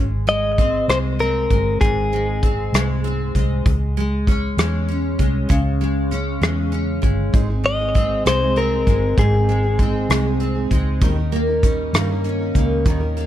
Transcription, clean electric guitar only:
0.29 D#5
0.90 C5
1.20 A#4
1.81 G#4
7.66 D#5
8.27 C5
8.57 A#4
9.19 G#4

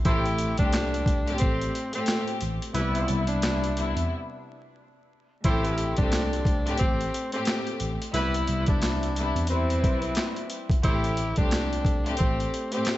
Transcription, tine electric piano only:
0.05 A1
0.59 C2
1.42 A1
2.41 A1
2.75 C2
3.09 C2
3.96 E2
5.45 A1
5.98 C2
6.81 A1
7.81 A1
8.14 C2
8.48 C2
9.36 E2
9.84 B1
10.84 A1
11.38 C2
12.20 A1

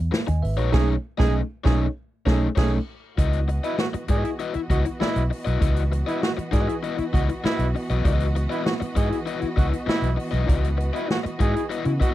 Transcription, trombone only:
0.73 G#4
1.19 G#4
1.65 G#4
2.27 G#4
2.58 G#4
3.64 E4
3.79 F#4
4.10 G#4
4.71 F#4
5.00 E4
6.07 E4
6.23 F#4
6.52 G#4
7.13 F#4
7.45 E4
8.50 E4
8.65 F#4
8.96 G#4
9.58 F#4
9.89 E4
10.94 E4
11.11 F#4
11.41 G#4
12.02 F#4

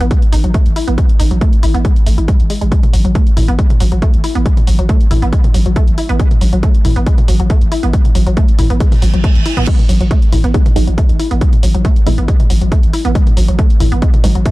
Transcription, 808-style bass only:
0.01 G#1
0.33 G#1
0.44 G#1
0.66 G#1
0.88 G#1
1.20 G#1
1.31 G#1
1.63 G#1
1.75 G#1
2.06 G#1
2.18 G#1
2.40 G#1
2.61 G#1
2.93 G#1
3.05 G#1
3.37 G#1
3.48 G#1
3.80 G#1
3.92 G#1
4.14 G#1
4.35 G#1
4.67 G#1
4.79 G#1
5.11 G#1
5.22 G#1
5.54 G#1
5.66 G#1
5.88 G#1
6.09 G#1
6.41 G#1
6.53 G#1
6.85 G#1
6.96 G#1
7.28 G#1
7.40 G#1
7.61 G#1
7.83 G#1
8.15 G#1
8.27 G#1
8.59 G#1
8.70 G#1
9.02 G#1
9.14 G#1
9.35 G#1
9.57 G#1
9.89 G#1
10.01 G#1
10.33 G#1
10.44 G#1
10.76 G#1
10.88 G#1
11.09 G#1
11.31 G#1
11.63 G#1
11.74 G#1
12.07 G#1
12.18 G#1
12.50 G#1
12.62 G#1
12.83 G#1
13.05 G#1
13.37 G#1
13.48 G#1
13.80 G#1
13.92 G#1
14.24 G#1
14.35 G#1

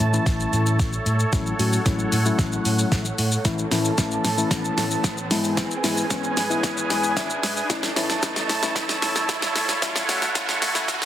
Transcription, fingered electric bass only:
0.00 A2
0.26 A1
0.53 A2
0.80 A1
1.06 A2
1.33 A1
1.59 A2
1.86 A1
2.12 A2
2.39 A1
2.65 A2
2.92 A1
3.18 A2
3.45 A1
3.71 A2
3.98 A1
4.24 A2
4.51 A1
4.77 A2
5.04 A1
5.31 G#2
5.84 G#2
6.11 G#1
6.37 G#2
6.63 G#1
6.90 G#2
7.17 G#1
7.43 G#2
7.70 A1
7.96 A2
8.23 A1
8.49 A2
8.76 A1
9.02 A2
9.29 A1
9.55 A2
9.82 A1
10.09 A2
10.36 A1
10.62 A2
10.88 A1

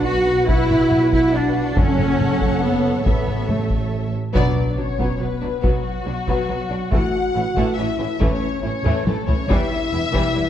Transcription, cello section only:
0.05 F#4
0.49 E4
1.13 E4
1.35 D4
1.77 C#4
2.62 B3
3.06 B3
3.49 A3
4.34 B2
4.78 B2
4.99 B2
5.21 B2
5.42 B2
5.64 B2
6.07 B2
6.28 B2
6.48 B2
6.70 B2
6.91 A2
7.35 A2
7.57 A2
7.79 A2
8.00 A2
8.21 A2
8.64 A2
8.85 A2
9.08 A2
9.28 A2
9.51 E2
9.93 E2
10.14 E2
10.36 E2

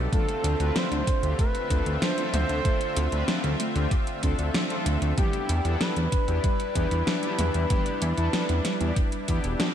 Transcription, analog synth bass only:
0.44 D2
0.60 D2
0.91 D2
1.23 D2
1.70 D2
1.86 D2
2.33 D2
2.49 D2
2.97 D2
3.12 D2
3.44 D2
3.76 D2
4.23 D2
4.39 D2
4.86 D2
5.02 D2
5.49 E2
5.65 E2
5.97 E2
6.28 E2
6.76 E2
6.91 E2
7.39 E2
7.55 E2
8.02 E2
8.18 E2
8.49 E2
8.81 E2
9.28 E2
9.44 E1

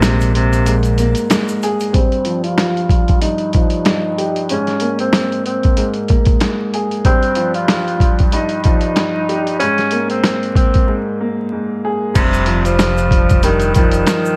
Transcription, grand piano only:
Already playing: G#2 A#3
0.66 G#2
0.99 A#3
1.31 G#2
1.63 G#4
1.95 G2
2.25 F3
3.22 G2
3.55 F3
3.85 G2
4.18 G4
4.51 G#2
4.81 A#3
5.77 G#2
6.10 A#3
6.41 G#2
6.74 G#4
7.05 G2
7.36 F3
8.33 G2
8.66 F3
8.95 G2
9.29 G4
9.62 G#2
9.92 A#3
10.88 G#2
11.21 A#3
11.52 G#2
11.85 G#4
12.16 G2
12.47 F3
13.43 G2
13.77 F3
14.06 G2

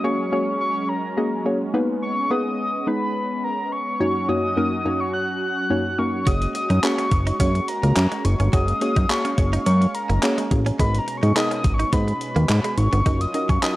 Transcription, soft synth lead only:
0.04 C#6
0.61 C#6
0.89 A#5
2.02 C#6
2.31 D#6
2.87 B5
3.44 A#5
3.72 C#6
4.29 D#6
5.00 C#6
5.13 F#6
5.98 C#6
6.27 D#6
6.55 D#6
6.83 C#6
7.40 C#6
7.68 A#5
8.25 C#6
8.53 D#6
8.81 D#6
9.10 C#6
9.66 C#6
9.94 A#5
10.80 B5
10.98 A#5
11.17 C#6
11.36 D#6
11.55 D#6
11.74 C#6
11.93 B5
12.78 C#6
13.21 D#6
13.49 C#6
13.63 D#6

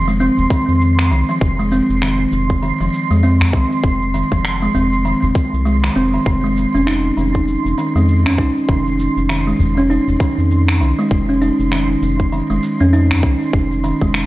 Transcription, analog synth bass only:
Already playing: F1
0.38 F1
0.68 F2
1.11 C2
1.41 F1
1.89 F1
2.32 F1
2.80 F1
3.11 F2
3.53 C2
3.84 F1
4.32 F1
4.75 F1
5.23 F1
5.53 C2
5.96 F1
6.26 F1
6.74 F1
7.17 F1
7.65 F1
7.95 F2
8.38 C2
8.69 F1
9.17 F1
9.60 F1
10.08 F1
10.38 F2
10.81 C2
11.11 F1
11.59 F1
12.02 F1
12.50 F1
12.81 F2
13.23 C2
13.53 F1
14.02 F1

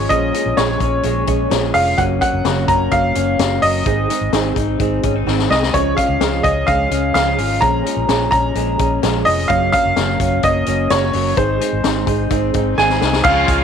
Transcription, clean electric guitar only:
Already playing: C#3 F3 G#3 C#4
0.11 A#2 C#4
0.34 F3
0.58 G#3
0.81 C#4
1.04 G#3
1.28 C#4
1.51 G#3
1.75 F3
1.99 F#2 C#4
2.22 F#3
2.45 A#3
2.69 C#4
2.93 A#3
3.16 C#4
3.40 A#3
3.63 F#3
3.86 G#2 D#4
4.10 G#3
4.33 C4
4.57 D#4
4.80 C4
5.04 C#4
5.16 D#4
5.27 C4
5.51 G#3
5.74 C#3 C#4
5.97 F3
6.21 G#3
6.44 C#4
6.67 G#3
6.91 C#4
7.15 G#3
7.38 F3
7.62 A#2 C#4
7.85 F3
8.09 G#3
8.32 C#4
8.56 G#3
8.80 C#4
9.03 G#3
9.26 F3
9.50 F#2 C#4
9.73 F#3
9.97 A#3
10.20 C#4
10.43 A#3
10.67 C#4
10.90 A#3
11.14 F#3
11.37 G#2 D#4
11.61 G#3
11.84 C4
12.08 D#4
12.31 C4
12.55 D#4
12.78 C4
13.02 G#3
13.25 C#3 F4
13.49 G#3

